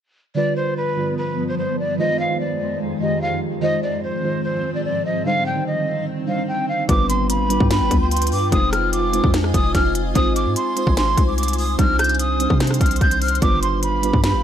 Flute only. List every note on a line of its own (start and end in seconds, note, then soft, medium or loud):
0.36 0.54 D5 loud
0.56 0.75 C5 medium
0.77 1.15 B4 medium
1.18 1.46 B4 medium
1.48 1.57 C5 medium
1.58 1.76 C5 medium
1.79 1.97 D5 medium
1.99 2.17 D#5 loud
2.19 2.38 F5 medium
2.40 2.78 D5 medium
3.01 3.19 D#5 medium
3.22 3.40 F5 medium
3.63 3.81 D#5 loud
3.83 4.01 D5 medium
4.03 4.42 C5 medium
4.44 4.73 C5 medium
4.75 4.84 D5 medium
4.85 5.03 D5 medium
5.05 5.23 D#5 medium
5.26 5.44 F5 loud
5.46 5.64 G5 medium
5.67 6.05 D#5 medium
6.28 6.46 F5 medium
6.48 6.66 G5 medium
6.69 6.87 F5 medium
6.89 7.07 D6 loud
7.10 7.28 C6 medium
7.30 7.68 B5 medium
7.71 8.00 B5 medium
8.01 8.10 C6 medium
8.11 8.30 C6 medium
8.32 8.50 D6 medium
8.52 8.70 D#6 loud
8.73 8.91 F6 medium
8.93 9.31 D6 medium
9.54 9.73 D#6 medium
9.75 9.93 F6 medium
10.16 10.34 D#6 loud
10.36 10.54 D6 medium
10.56 10.95 C6 medium
10.97 11.26 C6 medium
11.28 11.37 D6 medium
11.38 11.56 D6 medium
11.58 11.77 D#6 medium
11.79 11.97 F6 loud
11.99 12.17 G6 medium
12.20 12.58 D#6 medium
12.81 12.99 F6 medium
13.01 13.19 G6 medium
13.22 13.40 F6 medium
13.42 13.60 D6 loud
13.63 13.81 C6 medium
13.83 14.21 B5 medium
14.24 14.43 B5 medium